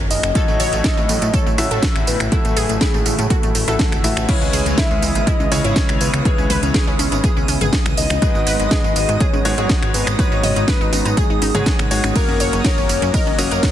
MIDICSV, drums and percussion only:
0, 0, Header, 1, 2, 480
1, 0, Start_track
1, 0, Key_signature, 4, "minor"
1, 0, Tempo, 491803
1, 344, Time_signature, 4, 2, 24, 8
1, 13387, End_track
2, 0, Start_track
2, 0, Title_t, "Drums"
2, 103, Note_on_c, 9, 46, 92
2, 104, Note_on_c, 9, 54, 84
2, 201, Note_off_c, 9, 46, 0
2, 202, Note_off_c, 9, 54, 0
2, 229, Note_on_c, 9, 26, 79
2, 229, Note_on_c, 9, 42, 54
2, 230, Note_on_c, 9, 54, 36
2, 326, Note_off_c, 9, 26, 0
2, 326, Note_off_c, 9, 42, 0
2, 327, Note_off_c, 9, 54, 0
2, 343, Note_on_c, 9, 42, 82
2, 344, Note_on_c, 9, 36, 117
2, 345, Note_on_c, 9, 54, 48
2, 441, Note_off_c, 9, 42, 0
2, 442, Note_off_c, 9, 36, 0
2, 442, Note_off_c, 9, 54, 0
2, 470, Note_on_c, 9, 54, 24
2, 567, Note_off_c, 9, 54, 0
2, 583, Note_on_c, 9, 46, 100
2, 584, Note_on_c, 9, 54, 80
2, 681, Note_off_c, 9, 46, 0
2, 682, Note_off_c, 9, 54, 0
2, 709, Note_on_c, 9, 42, 54
2, 710, Note_on_c, 9, 54, 35
2, 806, Note_off_c, 9, 42, 0
2, 807, Note_off_c, 9, 54, 0
2, 821, Note_on_c, 9, 38, 115
2, 824, Note_on_c, 9, 36, 119
2, 824, Note_on_c, 9, 42, 82
2, 825, Note_on_c, 9, 54, 49
2, 919, Note_off_c, 9, 38, 0
2, 921, Note_off_c, 9, 42, 0
2, 922, Note_off_c, 9, 36, 0
2, 922, Note_off_c, 9, 54, 0
2, 950, Note_on_c, 9, 54, 24
2, 1048, Note_off_c, 9, 54, 0
2, 1064, Note_on_c, 9, 46, 86
2, 1065, Note_on_c, 9, 54, 83
2, 1161, Note_off_c, 9, 46, 0
2, 1163, Note_off_c, 9, 54, 0
2, 1189, Note_on_c, 9, 42, 53
2, 1191, Note_on_c, 9, 54, 34
2, 1287, Note_off_c, 9, 42, 0
2, 1288, Note_off_c, 9, 54, 0
2, 1304, Note_on_c, 9, 36, 108
2, 1304, Note_on_c, 9, 42, 79
2, 1305, Note_on_c, 9, 54, 47
2, 1401, Note_off_c, 9, 42, 0
2, 1402, Note_off_c, 9, 36, 0
2, 1403, Note_off_c, 9, 54, 0
2, 1431, Note_on_c, 9, 54, 23
2, 1528, Note_off_c, 9, 54, 0
2, 1543, Note_on_c, 9, 46, 103
2, 1544, Note_on_c, 9, 54, 84
2, 1641, Note_off_c, 9, 46, 0
2, 1642, Note_off_c, 9, 54, 0
2, 1669, Note_on_c, 9, 42, 56
2, 1670, Note_on_c, 9, 54, 36
2, 1767, Note_off_c, 9, 42, 0
2, 1768, Note_off_c, 9, 54, 0
2, 1781, Note_on_c, 9, 38, 117
2, 1783, Note_on_c, 9, 42, 81
2, 1784, Note_on_c, 9, 36, 112
2, 1785, Note_on_c, 9, 54, 46
2, 1879, Note_off_c, 9, 38, 0
2, 1881, Note_off_c, 9, 42, 0
2, 1882, Note_off_c, 9, 36, 0
2, 1882, Note_off_c, 9, 54, 0
2, 1909, Note_on_c, 9, 26, 66
2, 1909, Note_on_c, 9, 42, 39
2, 1910, Note_on_c, 9, 54, 25
2, 2007, Note_off_c, 9, 26, 0
2, 2007, Note_off_c, 9, 42, 0
2, 2008, Note_off_c, 9, 54, 0
2, 2023, Note_on_c, 9, 46, 90
2, 2025, Note_on_c, 9, 54, 84
2, 2121, Note_off_c, 9, 46, 0
2, 2122, Note_off_c, 9, 54, 0
2, 2149, Note_on_c, 9, 26, 78
2, 2149, Note_on_c, 9, 42, 55
2, 2151, Note_on_c, 9, 54, 36
2, 2247, Note_off_c, 9, 26, 0
2, 2247, Note_off_c, 9, 42, 0
2, 2248, Note_off_c, 9, 54, 0
2, 2264, Note_on_c, 9, 36, 116
2, 2264, Note_on_c, 9, 42, 84
2, 2265, Note_on_c, 9, 54, 47
2, 2361, Note_off_c, 9, 42, 0
2, 2362, Note_off_c, 9, 36, 0
2, 2362, Note_off_c, 9, 54, 0
2, 2389, Note_on_c, 9, 42, 39
2, 2390, Note_on_c, 9, 54, 23
2, 2487, Note_off_c, 9, 42, 0
2, 2488, Note_off_c, 9, 54, 0
2, 2504, Note_on_c, 9, 46, 101
2, 2505, Note_on_c, 9, 54, 80
2, 2601, Note_off_c, 9, 46, 0
2, 2603, Note_off_c, 9, 54, 0
2, 2630, Note_on_c, 9, 42, 56
2, 2631, Note_on_c, 9, 54, 34
2, 2727, Note_off_c, 9, 42, 0
2, 2728, Note_off_c, 9, 54, 0
2, 2742, Note_on_c, 9, 38, 120
2, 2744, Note_on_c, 9, 36, 116
2, 2744, Note_on_c, 9, 42, 82
2, 2745, Note_on_c, 9, 54, 47
2, 2839, Note_off_c, 9, 38, 0
2, 2842, Note_off_c, 9, 36, 0
2, 2842, Note_off_c, 9, 42, 0
2, 2843, Note_off_c, 9, 54, 0
2, 2871, Note_on_c, 9, 54, 23
2, 2969, Note_off_c, 9, 54, 0
2, 2984, Note_on_c, 9, 46, 88
2, 2985, Note_on_c, 9, 54, 78
2, 3081, Note_off_c, 9, 46, 0
2, 3083, Note_off_c, 9, 54, 0
2, 3109, Note_on_c, 9, 42, 57
2, 3110, Note_on_c, 9, 54, 36
2, 3207, Note_off_c, 9, 42, 0
2, 3208, Note_off_c, 9, 54, 0
2, 3224, Note_on_c, 9, 36, 113
2, 3224, Note_on_c, 9, 42, 83
2, 3225, Note_on_c, 9, 54, 46
2, 3322, Note_off_c, 9, 36, 0
2, 3322, Note_off_c, 9, 42, 0
2, 3323, Note_off_c, 9, 54, 0
2, 3350, Note_on_c, 9, 42, 39
2, 3351, Note_on_c, 9, 54, 24
2, 3447, Note_off_c, 9, 42, 0
2, 3448, Note_off_c, 9, 54, 0
2, 3464, Note_on_c, 9, 46, 107
2, 3465, Note_on_c, 9, 54, 83
2, 3561, Note_off_c, 9, 46, 0
2, 3562, Note_off_c, 9, 54, 0
2, 3589, Note_on_c, 9, 42, 57
2, 3590, Note_on_c, 9, 54, 35
2, 3687, Note_off_c, 9, 42, 0
2, 3688, Note_off_c, 9, 54, 0
2, 3701, Note_on_c, 9, 38, 119
2, 3704, Note_on_c, 9, 36, 117
2, 3704, Note_on_c, 9, 42, 83
2, 3705, Note_on_c, 9, 54, 46
2, 3799, Note_off_c, 9, 38, 0
2, 3801, Note_off_c, 9, 42, 0
2, 3802, Note_off_c, 9, 36, 0
2, 3802, Note_off_c, 9, 54, 0
2, 3829, Note_on_c, 9, 26, 64
2, 3829, Note_on_c, 9, 42, 39
2, 3831, Note_on_c, 9, 54, 24
2, 3927, Note_off_c, 9, 26, 0
2, 3927, Note_off_c, 9, 42, 0
2, 3928, Note_off_c, 9, 54, 0
2, 3943, Note_on_c, 9, 46, 91
2, 3945, Note_on_c, 9, 54, 82
2, 4041, Note_off_c, 9, 46, 0
2, 4042, Note_off_c, 9, 54, 0
2, 4069, Note_on_c, 9, 26, 76
2, 4069, Note_on_c, 9, 42, 55
2, 4071, Note_on_c, 9, 54, 35
2, 4167, Note_off_c, 9, 26, 0
2, 4167, Note_off_c, 9, 42, 0
2, 4168, Note_off_c, 9, 54, 0
2, 4184, Note_on_c, 9, 36, 121
2, 4184, Note_on_c, 9, 42, 84
2, 4184, Note_on_c, 9, 49, 77
2, 4185, Note_on_c, 9, 54, 46
2, 4281, Note_off_c, 9, 42, 0
2, 4281, Note_off_c, 9, 49, 0
2, 4282, Note_off_c, 9, 36, 0
2, 4282, Note_off_c, 9, 54, 0
2, 4311, Note_on_c, 9, 54, 23
2, 4408, Note_off_c, 9, 54, 0
2, 4424, Note_on_c, 9, 46, 105
2, 4425, Note_on_c, 9, 54, 80
2, 4522, Note_off_c, 9, 46, 0
2, 4523, Note_off_c, 9, 54, 0
2, 4550, Note_on_c, 9, 42, 56
2, 4551, Note_on_c, 9, 54, 34
2, 4647, Note_off_c, 9, 42, 0
2, 4648, Note_off_c, 9, 54, 0
2, 4662, Note_on_c, 9, 38, 124
2, 4664, Note_on_c, 9, 36, 122
2, 4664, Note_on_c, 9, 42, 85
2, 4665, Note_on_c, 9, 54, 45
2, 4759, Note_off_c, 9, 38, 0
2, 4761, Note_off_c, 9, 36, 0
2, 4761, Note_off_c, 9, 42, 0
2, 4763, Note_off_c, 9, 54, 0
2, 4791, Note_on_c, 9, 54, 22
2, 4888, Note_off_c, 9, 54, 0
2, 4904, Note_on_c, 9, 46, 88
2, 4905, Note_on_c, 9, 54, 81
2, 5002, Note_off_c, 9, 46, 0
2, 5003, Note_off_c, 9, 54, 0
2, 5030, Note_on_c, 9, 42, 55
2, 5031, Note_on_c, 9, 54, 34
2, 5128, Note_off_c, 9, 42, 0
2, 5129, Note_off_c, 9, 54, 0
2, 5144, Note_on_c, 9, 36, 114
2, 5144, Note_on_c, 9, 42, 83
2, 5145, Note_on_c, 9, 54, 44
2, 5241, Note_off_c, 9, 36, 0
2, 5242, Note_off_c, 9, 42, 0
2, 5243, Note_off_c, 9, 54, 0
2, 5269, Note_on_c, 9, 63, 96
2, 5271, Note_on_c, 9, 54, 23
2, 5367, Note_off_c, 9, 63, 0
2, 5368, Note_off_c, 9, 54, 0
2, 5384, Note_on_c, 9, 46, 111
2, 5385, Note_on_c, 9, 54, 81
2, 5481, Note_off_c, 9, 46, 0
2, 5482, Note_off_c, 9, 54, 0
2, 5509, Note_on_c, 9, 42, 56
2, 5510, Note_on_c, 9, 54, 35
2, 5607, Note_off_c, 9, 42, 0
2, 5608, Note_off_c, 9, 54, 0
2, 5621, Note_on_c, 9, 38, 121
2, 5623, Note_on_c, 9, 42, 83
2, 5624, Note_on_c, 9, 36, 121
2, 5625, Note_on_c, 9, 54, 45
2, 5719, Note_off_c, 9, 38, 0
2, 5721, Note_off_c, 9, 36, 0
2, 5721, Note_off_c, 9, 42, 0
2, 5722, Note_off_c, 9, 54, 0
2, 5749, Note_on_c, 9, 26, 64
2, 5749, Note_on_c, 9, 42, 40
2, 5750, Note_on_c, 9, 54, 24
2, 5846, Note_off_c, 9, 26, 0
2, 5846, Note_off_c, 9, 42, 0
2, 5848, Note_off_c, 9, 54, 0
2, 5863, Note_on_c, 9, 46, 95
2, 5864, Note_on_c, 9, 54, 80
2, 5960, Note_off_c, 9, 46, 0
2, 5962, Note_off_c, 9, 54, 0
2, 5989, Note_on_c, 9, 26, 78
2, 5989, Note_on_c, 9, 42, 56
2, 5990, Note_on_c, 9, 54, 35
2, 6086, Note_off_c, 9, 26, 0
2, 6086, Note_off_c, 9, 42, 0
2, 6087, Note_off_c, 9, 54, 0
2, 6104, Note_on_c, 9, 36, 127
2, 6104, Note_on_c, 9, 42, 79
2, 6105, Note_on_c, 9, 54, 42
2, 6201, Note_off_c, 9, 36, 0
2, 6201, Note_off_c, 9, 42, 0
2, 6202, Note_off_c, 9, 54, 0
2, 6230, Note_on_c, 9, 54, 22
2, 6328, Note_off_c, 9, 54, 0
2, 6343, Note_on_c, 9, 45, 90
2, 6343, Note_on_c, 9, 46, 107
2, 6344, Note_on_c, 9, 54, 73
2, 6441, Note_off_c, 9, 45, 0
2, 6441, Note_off_c, 9, 46, 0
2, 6442, Note_off_c, 9, 54, 0
2, 6469, Note_on_c, 9, 42, 55
2, 6470, Note_on_c, 9, 54, 34
2, 6567, Note_off_c, 9, 42, 0
2, 6568, Note_off_c, 9, 54, 0
2, 6581, Note_on_c, 9, 38, 126
2, 6583, Note_on_c, 9, 42, 84
2, 6584, Note_on_c, 9, 36, 125
2, 6585, Note_on_c, 9, 54, 44
2, 6679, Note_off_c, 9, 38, 0
2, 6681, Note_off_c, 9, 36, 0
2, 6681, Note_off_c, 9, 42, 0
2, 6682, Note_off_c, 9, 54, 0
2, 6710, Note_on_c, 9, 54, 22
2, 6808, Note_off_c, 9, 54, 0
2, 6823, Note_on_c, 9, 63, 89
2, 6824, Note_on_c, 9, 46, 95
2, 6825, Note_on_c, 9, 54, 73
2, 6921, Note_off_c, 9, 46, 0
2, 6921, Note_off_c, 9, 63, 0
2, 6922, Note_off_c, 9, 54, 0
2, 6949, Note_on_c, 9, 42, 51
2, 6950, Note_on_c, 9, 54, 32
2, 7047, Note_off_c, 9, 42, 0
2, 7048, Note_off_c, 9, 54, 0
2, 7064, Note_on_c, 9, 36, 119
2, 7064, Note_on_c, 9, 42, 81
2, 7065, Note_on_c, 9, 54, 44
2, 7161, Note_off_c, 9, 36, 0
2, 7161, Note_off_c, 9, 42, 0
2, 7162, Note_off_c, 9, 54, 0
2, 7190, Note_on_c, 9, 54, 21
2, 7288, Note_off_c, 9, 54, 0
2, 7303, Note_on_c, 9, 46, 113
2, 7303, Note_on_c, 9, 63, 92
2, 7304, Note_on_c, 9, 54, 76
2, 7401, Note_off_c, 9, 46, 0
2, 7401, Note_off_c, 9, 63, 0
2, 7402, Note_off_c, 9, 54, 0
2, 7429, Note_on_c, 9, 42, 57
2, 7429, Note_on_c, 9, 45, 98
2, 7430, Note_on_c, 9, 54, 33
2, 7526, Note_off_c, 9, 42, 0
2, 7527, Note_off_c, 9, 45, 0
2, 7528, Note_off_c, 9, 54, 0
2, 7541, Note_on_c, 9, 38, 126
2, 7543, Note_on_c, 9, 42, 82
2, 7544, Note_on_c, 9, 36, 122
2, 7544, Note_on_c, 9, 54, 43
2, 7639, Note_off_c, 9, 38, 0
2, 7641, Note_off_c, 9, 36, 0
2, 7641, Note_off_c, 9, 42, 0
2, 7642, Note_off_c, 9, 54, 0
2, 7669, Note_on_c, 9, 26, 69
2, 7669, Note_on_c, 9, 42, 39
2, 7670, Note_on_c, 9, 45, 85
2, 7670, Note_on_c, 9, 54, 23
2, 7767, Note_off_c, 9, 26, 0
2, 7767, Note_off_c, 9, 42, 0
2, 7767, Note_off_c, 9, 45, 0
2, 7768, Note_off_c, 9, 54, 0
2, 7783, Note_on_c, 9, 46, 102
2, 7784, Note_on_c, 9, 54, 77
2, 7881, Note_off_c, 9, 46, 0
2, 7882, Note_off_c, 9, 54, 0
2, 7909, Note_on_c, 9, 26, 80
2, 7909, Note_on_c, 9, 42, 53
2, 7909, Note_on_c, 9, 63, 69
2, 7910, Note_on_c, 9, 54, 31
2, 8006, Note_off_c, 9, 26, 0
2, 8006, Note_off_c, 9, 42, 0
2, 8007, Note_off_c, 9, 54, 0
2, 8007, Note_off_c, 9, 63, 0
2, 8023, Note_on_c, 9, 42, 79
2, 8024, Note_on_c, 9, 36, 127
2, 8024, Note_on_c, 9, 54, 43
2, 8121, Note_off_c, 9, 36, 0
2, 8121, Note_off_c, 9, 42, 0
2, 8122, Note_off_c, 9, 54, 0
2, 8150, Note_on_c, 9, 54, 21
2, 8247, Note_off_c, 9, 54, 0
2, 8263, Note_on_c, 9, 46, 110
2, 8264, Note_on_c, 9, 54, 73
2, 8361, Note_off_c, 9, 46, 0
2, 8362, Note_off_c, 9, 54, 0
2, 8389, Note_on_c, 9, 42, 51
2, 8390, Note_on_c, 9, 54, 31
2, 8487, Note_off_c, 9, 42, 0
2, 8488, Note_off_c, 9, 54, 0
2, 8501, Note_on_c, 9, 38, 120
2, 8504, Note_on_c, 9, 36, 125
2, 8504, Note_on_c, 9, 42, 79
2, 8505, Note_on_c, 9, 54, 42
2, 8599, Note_off_c, 9, 38, 0
2, 8601, Note_off_c, 9, 36, 0
2, 8601, Note_off_c, 9, 42, 0
2, 8602, Note_off_c, 9, 54, 0
2, 8630, Note_on_c, 9, 54, 22
2, 8728, Note_off_c, 9, 54, 0
2, 8744, Note_on_c, 9, 46, 98
2, 8745, Note_on_c, 9, 54, 76
2, 8841, Note_off_c, 9, 46, 0
2, 8843, Note_off_c, 9, 54, 0
2, 8869, Note_on_c, 9, 42, 52
2, 8871, Note_on_c, 9, 54, 33
2, 8967, Note_off_c, 9, 42, 0
2, 8968, Note_off_c, 9, 54, 0
2, 8984, Note_on_c, 9, 36, 124
2, 8984, Note_on_c, 9, 42, 77
2, 8985, Note_on_c, 9, 54, 42
2, 9081, Note_off_c, 9, 42, 0
2, 9082, Note_off_c, 9, 36, 0
2, 9083, Note_off_c, 9, 54, 0
2, 9109, Note_on_c, 9, 63, 99
2, 9111, Note_on_c, 9, 54, 22
2, 9207, Note_off_c, 9, 63, 0
2, 9208, Note_off_c, 9, 54, 0
2, 9223, Note_on_c, 9, 46, 111
2, 9225, Note_on_c, 9, 54, 73
2, 9321, Note_off_c, 9, 46, 0
2, 9322, Note_off_c, 9, 54, 0
2, 9349, Note_on_c, 9, 42, 51
2, 9350, Note_on_c, 9, 54, 34
2, 9447, Note_off_c, 9, 42, 0
2, 9448, Note_off_c, 9, 54, 0
2, 9462, Note_on_c, 9, 38, 121
2, 9464, Note_on_c, 9, 36, 127
2, 9464, Note_on_c, 9, 42, 77
2, 9465, Note_on_c, 9, 54, 43
2, 9559, Note_off_c, 9, 38, 0
2, 9561, Note_off_c, 9, 42, 0
2, 9562, Note_off_c, 9, 36, 0
2, 9563, Note_off_c, 9, 54, 0
2, 9589, Note_on_c, 9, 26, 67
2, 9589, Note_on_c, 9, 42, 38
2, 9591, Note_on_c, 9, 54, 21
2, 9687, Note_off_c, 9, 26, 0
2, 9687, Note_off_c, 9, 42, 0
2, 9688, Note_off_c, 9, 54, 0
2, 9704, Note_on_c, 9, 46, 101
2, 9705, Note_on_c, 9, 54, 75
2, 9801, Note_off_c, 9, 46, 0
2, 9802, Note_off_c, 9, 54, 0
2, 9829, Note_on_c, 9, 26, 86
2, 9829, Note_on_c, 9, 42, 51
2, 9830, Note_on_c, 9, 54, 33
2, 9927, Note_off_c, 9, 26, 0
2, 9927, Note_off_c, 9, 42, 0
2, 9928, Note_off_c, 9, 54, 0
2, 9944, Note_on_c, 9, 36, 127
2, 9944, Note_on_c, 9, 42, 76
2, 9945, Note_on_c, 9, 54, 44
2, 10042, Note_off_c, 9, 36, 0
2, 10042, Note_off_c, 9, 42, 0
2, 10043, Note_off_c, 9, 54, 0
2, 10071, Note_on_c, 9, 54, 22
2, 10168, Note_off_c, 9, 54, 0
2, 10184, Note_on_c, 9, 45, 86
2, 10184, Note_on_c, 9, 46, 112
2, 10185, Note_on_c, 9, 54, 76
2, 10281, Note_off_c, 9, 45, 0
2, 10281, Note_off_c, 9, 46, 0
2, 10283, Note_off_c, 9, 54, 0
2, 10310, Note_on_c, 9, 42, 50
2, 10311, Note_on_c, 9, 54, 33
2, 10407, Note_off_c, 9, 42, 0
2, 10409, Note_off_c, 9, 54, 0
2, 10422, Note_on_c, 9, 38, 118
2, 10424, Note_on_c, 9, 36, 127
2, 10424, Note_on_c, 9, 42, 76
2, 10425, Note_on_c, 9, 54, 46
2, 10519, Note_off_c, 9, 38, 0
2, 10521, Note_off_c, 9, 42, 0
2, 10522, Note_off_c, 9, 36, 0
2, 10523, Note_off_c, 9, 54, 0
2, 10551, Note_on_c, 9, 54, 23
2, 10648, Note_off_c, 9, 54, 0
2, 10664, Note_on_c, 9, 46, 93
2, 10664, Note_on_c, 9, 63, 82
2, 10665, Note_on_c, 9, 54, 75
2, 10761, Note_off_c, 9, 63, 0
2, 10762, Note_off_c, 9, 46, 0
2, 10763, Note_off_c, 9, 54, 0
2, 10790, Note_on_c, 9, 42, 48
2, 10791, Note_on_c, 9, 54, 32
2, 10887, Note_off_c, 9, 42, 0
2, 10888, Note_off_c, 9, 54, 0
2, 10904, Note_on_c, 9, 36, 119
2, 10904, Note_on_c, 9, 42, 77
2, 10905, Note_on_c, 9, 54, 43
2, 11002, Note_off_c, 9, 36, 0
2, 11002, Note_off_c, 9, 42, 0
2, 11003, Note_off_c, 9, 54, 0
2, 11031, Note_on_c, 9, 54, 22
2, 11128, Note_off_c, 9, 54, 0
2, 11144, Note_on_c, 9, 46, 112
2, 11144, Note_on_c, 9, 63, 93
2, 11145, Note_on_c, 9, 54, 77
2, 11241, Note_off_c, 9, 63, 0
2, 11242, Note_off_c, 9, 46, 0
2, 11243, Note_off_c, 9, 54, 0
2, 11269, Note_on_c, 9, 42, 52
2, 11269, Note_on_c, 9, 45, 99
2, 11270, Note_on_c, 9, 54, 32
2, 11366, Note_off_c, 9, 45, 0
2, 11367, Note_off_c, 9, 42, 0
2, 11368, Note_off_c, 9, 54, 0
2, 11382, Note_on_c, 9, 38, 122
2, 11384, Note_on_c, 9, 36, 125
2, 11384, Note_on_c, 9, 42, 79
2, 11385, Note_on_c, 9, 54, 44
2, 11479, Note_off_c, 9, 38, 0
2, 11482, Note_off_c, 9, 36, 0
2, 11482, Note_off_c, 9, 42, 0
2, 11483, Note_off_c, 9, 54, 0
2, 11509, Note_on_c, 9, 45, 84
2, 11510, Note_on_c, 9, 26, 70
2, 11510, Note_on_c, 9, 42, 37
2, 11511, Note_on_c, 9, 54, 23
2, 11606, Note_off_c, 9, 45, 0
2, 11607, Note_off_c, 9, 26, 0
2, 11607, Note_off_c, 9, 42, 0
2, 11608, Note_off_c, 9, 54, 0
2, 11624, Note_on_c, 9, 46, 98
2, 11625, Note_on_c, 9, 54, 76
2, 11721, Note_off_c, 9, 46, 0
2, 11723, Note_off_c, 9, 54, 0
2, 11748, Note_on_c, 9, 63, 67
2, 11749, Note_on_c, 9, 26, 85
2, 11749, Note_on_c, 9, 42, 50
2, 11750, Note_on_c, 9, 54, 33
2, 11846, Note_off_c, 9, 63, 0
2, 11847, Note_off_c, 9, 26, 0
2, 11847, Note_off_c, 9, 42, 0
2, 11848, Note_off_c, 9, 54, 0
2, 11864, Note_on_c, 9, 36, 118
2, 11864, Note_on_c, 9, 42, 75
2, 11864, Note_on_c, 9, 51, 73
2, 11865, Note_on_c, 9, 54, 46
2, 11961, Note_off_c, 9, 42, 0
2, 11961, Note_off_c, 9, 51, 0
2, 11962, Note_off_c, 9, 36, 0
2, 11962, Note_off_c, 9, 54, 0
2, 11990, Note_on_c, 9, 54, 23
2, 12088, Note_off_c, 9, 54, 0
2, 12103, Note_on_c, 9, 46, 107
2, 12105, Note_on_c, 9, 54, 82
2, 12201, Note_off_c, 9, 46, 0
2, 12202, Note_off_c, 9, 54, 0
2, 12229, Note_on_c, 9, 42, 52
2, 12230, Note_on_c, 9, 54, 34
2, 12327, Note_off_c, 9, 42, 0
2, 12328, Note_off_c, 9, 54, 0
2, 12341, Note_on_c, 9, 38, 113
2, 12343, Note_on_c, 9, 42, 76
2, 12343, Note_on_c, 9, 51, 73
2, 12344, Note_on_c, 9, 36, 123
2, 12345, Note_on_c, 9, 54, 46
2, 12439, Note_off_c, 9, 38, 0
2, 12441, Note_off_c, 9, 42, 0
2, 12441, Note_off_c, 9, 51, 0
2, 12442, Note_off_c, 9, 36, 0
2, 12442, Note_off_c, 9, 54, 0
2, 12470, Note_on_c, 9, 54, 23
2, 12568, Note_off_c, 9, 54, 0
2, 12583, Note_on_c, 9, 46, 91
2, 12585, Note_on_c, 9, 54, 81
2, 12681, Note_off_c, 9, 46, 0
2, 12682, Note_off_c, 9, 54, 0
2, 12709, Note_on_c, 9, 42, 50
2, 12710, Note_on_c, 9, 54, 34
2, 12807, Note_off_c, 9, 42, 0
2, 12808, Note_off_c, 9, 54, 0
2, 12824, Note_on_c, 9, 36, 111
2, 12824, Note_on_c, 9, 42, 76
2, 12824, Note_on_c, 9, 51, 69
2, 12825, Note_on_c, 9, 54, 45
2, 12921, Note_off_c, 9, 42, 0
2, 12921, Note_off_c, 9, 51, 0
2, 12922, Note_off_c, 9, 36, 0
2, 12922, Note_off_c, 9, 54, 0
2, 12949, Note_on_c, 9, 63, 89
2, 12950, Note_on_c, 9, 54, 23
2, 13046, Note_off_c, 9, 63, 0
2, 13048, Note_off_c, 9, 54, 0
2, 13064, Note_on_c, 9, 46, 107
2, 13065, Note_on_c, 9, 54, 81
2, 13162, Note_off_c, 9, 46, 0
2, 13163, Note_off_c, 9, 54, 0
2, 13190, Note_on_c, 9, 42, 51
2, 13191, Note_on_c, 9, 54, 34
2, 13287, Note_off_c, 9, 42, 0
2, 13288, Note_off_c, 9, 54, 0
2, 13302, Note_on_c, 9, 38, 116
2, 13304, Note_on_c, 9, 36, 117
2, 13304, Note_on_c, 9, 42, 77
2, 13304, Note_on_c, 9, 51, 73
2, 13305, Note_on_c, 9, 54, 46
2, 13387, Note_off_c, 9, 36, 0
2, 13387, Note_off_c, 9, 38, 0
2, 13387, Note_off_c, 9, 42, 0
2, 13387, Note_off_c, 9, 51, 0
2, 13387, Note_off_c, 9, 54, 0
2, 13387, End_track
0, 0, End_of_file